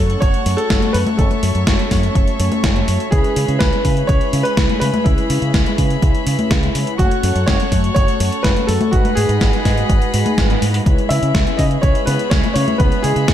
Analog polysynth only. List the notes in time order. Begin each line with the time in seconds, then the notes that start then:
Already playing: A3 C#4 F#4 C#5
0.94 C#4 C#5
1.19 A3 C#4 F#4 C#5
2.40 A3 C#4 F#4 C#5
2.88 A3 C#4 F#4 C#5
3.12 G#3 C#4 E4 B4
4.81 G#3 C#4 E4 B4
5.06 G#3 C#4 E4 B4
6.75 G#3 C#4 E4 B4
6.99 A3 C#4 F#4 C#5
8.68 A3 C#4 F#4
8.93 G#3 D#4 F#4 B4
10.14 G#3 D#4 F#4 B4
10.62 G#3 D#4 F#4 B4
10.86 G#3 C#4 E4 B4
12.56 G#3 C#4 E4 B4
12.80 G#3 C#4 E4 B4